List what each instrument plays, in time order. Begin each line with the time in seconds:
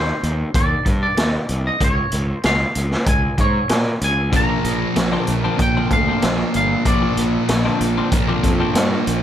Already playing: fingered electric bass D#2, clean electric guitar C5
0.23 fingered electric bass D#2, closed hi-hat
0.54 fingered electric bass D#2, clean electric guitar D5, kick, closed hi-hat
0.86 fingered electric bass G2, kick, closed hi-hat
1.03 clean electric guitar D5
1.17 fingered electric bass D#2, snare, closed hi-hat
1.49 fingered electric bass C2, closed hi-hat
1.67 clean electric guitar D#5
1.81 fingered electric bass C#2, clean electric guitar C#5, kick, closed hi-hat
2.11 fingered electric bass C#2, closed hi-hat
2.29 clean electric guitar C5
2.43 fingered electric bass C#2, clean electric guitar F5, snare, closed hi-hat
2.75 fingered electric bass C#2, closed hi-hat
2.91 snare
3.06 fingered electric bass C#2, clean electric guitar G#5, kick, closed hi-hat
3.38 fingered electric bass G#2, clean electric guitar C#5, kick, closed hi-hat
3.69 fingered electric bass A#2, snare, closed hi-hat
4.01 fingered electric bass C#2, clean electric guitar G#5, closed hi-hat
4.32 fingered electric bass A#1, distorted electric guitar A#2 F3 A#3, kick, closed hi-hat
4.36 clean electric guitar A#5
4.49 muted clean electric guitar stroke
4.64 fingered electric bass A#1, closed hi-hat
4.96 fingered electric bass A#1, muted clean electric guitar stroke, snare, closed hi-hat
5.12 clean electric guitar D3 F3 C4 D4
5.27 fingered electric bass A#1, closed hi-hat
5.44 clean electric guitar D3 F3 C4 D4
5.58 fingered electric bass A#1, distorted electric guitar A#2 F3 A#3, clean electric guitar G5, muted clean electric guitar stroke, kick, closed hi-hat
5.77 clean electric guitar D3 F3 C4 D4
5.91 fingered electric bass D2, clean electric guitar F5, kick, closed hi-hat
6.08 clean electric guitar D3 F3 C4 D4
6.22 fingered electric bass A#1, snare, closed hi-hat
6.39 muted clean electric guitar stroke
6.54 fingered electric bass G1, clean electric guitar F5, closed hi-hat
6.84 fingered electric bass A#1, distorted electric guitar A#2 F3 A#3, clean electric guitar D5, kick, closed hi-hat
7.02 muted clean electric guitar stroke
7.17 fingered electric bass A#1, closed hi-hat
7.48 fingered electric bass A#1, muted clean electric guitar stroke, snare, closed hi-hat
7.65 clean electric guitar D3 F3 C4 D4
7.81 fingered electric bass A#1, closed hi-hat
7.97 clean electric guitar D3 F3 C4 D4
8.11 fingered electric bass A#1, distorted electric guitar A#2 F3 A#3, muted clean electric guitar stroke, kick, closed hi-hat
8.28 clean electric guitar D3 F3 C4 D4
8.44 fingered electric bass F2, kick, closed hi-hat
8.60 clean electric guitar D3 F3 C4 D4
8.75 fingered electric bass G2, snare, closed hi-hat
8.91 muted clean electric guitar stroke
9.07 fingered electric bass A#1, closed hi-hat